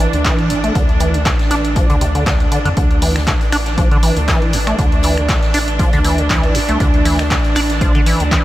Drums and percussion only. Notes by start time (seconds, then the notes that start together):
0.00 closed hi-hat
0.13 closed hi-hat
0.24 kick, snare, clap, closed hi-hat
0.39 closed hi-hat
0.50 closed hi-hat
0.64 closed hi-hat
0.75 kick, closed hi-hat
0.89 closed hi-hat
1.00 closed hi-hat
1.14 closed hi-hat
1.25 kick, snare, clap, closed hi-hat
1.39 snare, closed hi-hat
1.50 snare, closed hi-hat
1.65 closed hi-hat
1.76 kick, closed hi-hat
1.90 closed hi-hat
2.01 closed hi-hat
2.15 closed hi-hat
2.26 kick, snare, clap, closed hi-hat
2.40 closed hi-hat
2.52 closed hi-hat
2.65 closed hi-hat
2.77 kick, closed hi-hat
2.91 closed hi-hat
3.02 open hi-hat
3.16 finger snap, snare, closed hi-hat
3.27 kick, snare, clap, closed hi-hat
3.41 closed hi-hat
3.52 finger snap, closed hi-hat, open hi-hat
3.66 snare, closed hi-hat
3.78 kick, closed hi-hat
3.91 closed hi-hat
4.03 closed hi-hat, open hi-hat
4.17 closed hi-hat
4.28 kick, snare, clap, closed hi-hat
4.42 closed hi-hat
4.53 closed hi-hat, open hi-hat
4.67 finger snap, closed hi-hat
4.79 kick, closed hi-hat
4.92 closed hi-hat
5.03 closed hi-hat, open hi-hat
5.18 finger snap
5.28 kick, snare, clap, closed hi-hat
5.42 snare, closed hi-hat
5.54 closed hi-hat, open hi-hat
5.68 closed hi-hat
5.79 kick, closed hi-hat
5.93 closed hi-hat
6.04 closed hi-hat, open hi-hat
6.18 closed hi-hat
6.30 kick, snare, clap, closed hi-hat
6.43 closed hi-hat
6.55 closed hi-hat, open hi-hat
6.69 closed hi-hat
6.80 kick, closed hi-hat
6.94 closed hi-hat
7.05 open hi-hat
7.19 finger snap, snare, closed hi-hat
7.30 kick, snare, clap, closed hi-hat
7.44 closed hi-hat
7.55 finger snap, closed hi-hat, open hi-hat
7.70 snare, closed hi-hat
7.81 kick, closed hi-hat
7.95 closed hi-hat
8.06 closed hi-hat, open hi-hat
8.20 closed hi-hat
8.31 kick, snare, clap, closed hi-hat